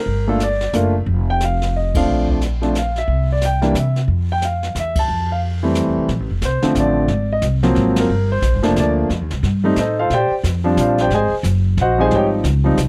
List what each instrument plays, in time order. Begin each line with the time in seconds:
Already playing: grand piano A#4
0.06 upright bass G1, brush sweep
0.27 grand piano A3 A#3 D4 F4 A4
0.40 grand piano D5, snare, hi-hat pedal
0.61 snare
0.73 upright bass F#1, grand piano A3 A#3 D4 F4 A#4, snare, hi-hat pedal
1.06 upright bass F1, brush sweep, kick
1.30 grand piano G5
1.40 snare, hi-hat pedal
1.44 grand piano F5
1.62 snare
1.76 grand piano D#5
1.95 grand piano F3 A3 C4 D4 F5, kick, ride
2.07 upright bass A#1, brush sweep
2.28 grand piano D5, kick
2.41 snare, hi-hat pedal
2.62 grand piano F3 A3 C4 D4, snare
2.75 grand piano F5, snare, hi-hat pedal
2.96 grand piano E5, snare
3.08 upright bass C2, brush sweep, kick
3.32 grand piano D5
3.42 grand piano G5, snare, hi-hat pedal
3.62 grand piano E3 G3 A#3 D4, snare
3.74 upright bass C3, snare, hi-hat pedal
3.79 grand piano E5
3.96 snare
4.08 upright bass F2, brush sweep, kick
4.32 grand piano G5
4.42 grand piano F5, snare, hi-hat pedal
4.63 snare
4.75 upright bass E2, snare, hi-hat pedal
4.80 grand piano E5
4.95 grand piano A5, kick, ride
5.08 upright bass F2, brush sweep
5.32 grand piano F5
5.63 grand piano E3 G3 A3 C4
5.75 snare, hi-hat pedal
5.87 upright bass E2
5.97 upright bass C2
6.08 upright bass A#1, brush sweep, kick, snare
6.20 upright bass A1
6.30 upright bass F1
6.42 upright bass C2, grand piano C5, kick, snare, hi-hat pedal
6.62 grand piano D3 F3 A3 C4, muted upright bass stroke, snare
6.75 upright bass A1, kick, snare, hi-hat pedal
6.80 grand piano D5
7.08 upright bass G#1, brush sweep, kick, snare
7.32 grand piano D#5
7.42 upright bass C2, kick, snare, hi-hat pedal
7.63 grand piano F3 F#3 A#3 C4, snare
7.75 upright bass G#1, kick, snare
7.96 grand piano A#4, snare, ride
8.09 upright bass G1, brush sweep
8.32 grand piano C5
8.42 upright bass A#1, kick, snare, hi-hat pedal
8.54 upright bass G1
8.62 upright bass F1, grand piano F3 A3 A#3 D4, snare
8.76 upright bass D2, grand piano D5, kick, snare, hi-hat pedal
9.10 upright bass F2, brush sweep, kick, snare
9.21 upright bass D#2
9.30 upright bass C2, snare
9.43 upright bass G2, kick, snare
9.64 grand piano G3 A3 C4 D#4
9.76 upright bass A2, grand piano D#4 D#5, kick, snare, hi-hat pedal
9.80 grand piano A4 C5
9.99 grand piano F4 A4 C5 F5
10.10 upright bass A#2, grand piano D5 G5, brush sweep, kick, snare
10.14 grand piano G4 C5
10.31 muted upright bass stroke
10.43 upright bass F2, kick, snare, hi-hat pedal
10.64 grand piano F3 G3 C4 D4
10.77 upright bass A#1, grand piano F4 C5 D5 F5, kick, snare, hi-hat pedal
10.98 grand piano G4 C5 D5 G5, snare
11.10 upright bass G#1, grand piano G#5, brush sweep, kick, snare
11.14 grand piano G#4 C5 D#5
11.32 muted upright bass stroke
11.43 upright bass F#1, kick, snare, hi-hat pedal
11.77 upright bass A#1, grand piano F#5, kick, snare
11.82 grand piano F#4 C5 D#5
11.98 grand piano F3 G3 C4 D#4 G#4 C5 D#5 G#5
12.11 upright bass G#1, brush sweep, kick, snare
12.15 grand piano G4 C#5 D#5 G5
12.44 upright bass C#2, kick, snare, hi-hat pedal
12.64 grand piano F3 G3 C4 D#4
12.77 upright bass C2, kick, snare, hi-hat pedal